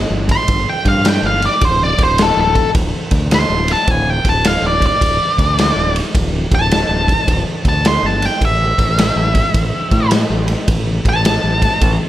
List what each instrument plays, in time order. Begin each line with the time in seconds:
0.10 fingered electric bass G1
0.29 lead electric guitar C6, kick, ride
0.48 fingered electric bass G1, kick, ride
0.70 lead electric guitar G5
0.85 fingered electric bass G2, lead electric guitar F5, kick, ride
1.05 lead electric guitar G5, snare, ride
1.22 fingered electric bass G1
1.27 lead electric guitar F5
1.42 lead electric guitar D5, ride
1.61 fingered electric bass D1, lead electric guitar C5, kick, ride
1.83 lead electric guitar D5
1.98 fingered electric bass D1, kick, ride
2.03 lead electric guitar C5
2.18 snare, ride
2.22 lead electric guitar A4
2.37 fingered electric bass D1, lead electric guitar A4
2.55 kick, ride
2.75 fingered electric bass D1, kick, ride
3.11 fingered electric bass D2, kick, ride
3.31 lead electric guitar C6, snare, ride
3.50 fingered electric bass D1
3.68 ride
3.72 lead electric guitar A5
3.87 fingered electric bass D1, lead electric guitar G#5, kick, ride
4.10 lead electric guitar G5
4.25 fingered electric bass D1, kick, ride
4.29 lead electric guitar A5
4.45 lead electric guitar F5, snare, ride
4.62 fingered electric bass D1
4.67 lead electric guitar D5
4.82 kick, ride
4.86 lead electric guitar D5
5.01 fingered electric bass D1, kick, ride
5.38 fingered electric bass D2, kick, ride
5.59 snare, ride
5.76 fingered electric bass D1
5.96 ride
6.15 fingered electric bass D1, kick, ride
6.51 fingered electric bass D1, lead electric guitar A5, kick, ride
6.71 snare, ride
6.89 fingered electric bass D1
7.08 kick, ride
7.27 fingered electric bass D1, kick, ride
7.65 fingered electric bass D2, lead electric guitar A5, kick, ride
7.85 lead electric guitar C6, snare, ride
8.03 fingered electric bass G1, lead electric guitar A5
8.22 lead electric guitar G5, ride
8.41 fingered electric bass A1, kick, ride
8.45 lead electric guitar E5
8.78 fingered electric bass A1, kick, ride
8.98 snare, ride
9.16 fingered electric bass A1
9.35 kick, ride
9.54 fingered electric bass A1, kick, ride
9.91 fingered electric bass A2, kick, ride
10.11 snare, ride
10.30 fingered electric bass A1
10.48 ride
10.68 fingered electric bass A1, kick, ride
11.05 fingered electric bass A1, lead electric guitar A5, kick, ride
11.25 snare, ride
11.44 fingered electric bass A1
11.62 kick, ride
11.81 fingered electric bass A1, kick, ride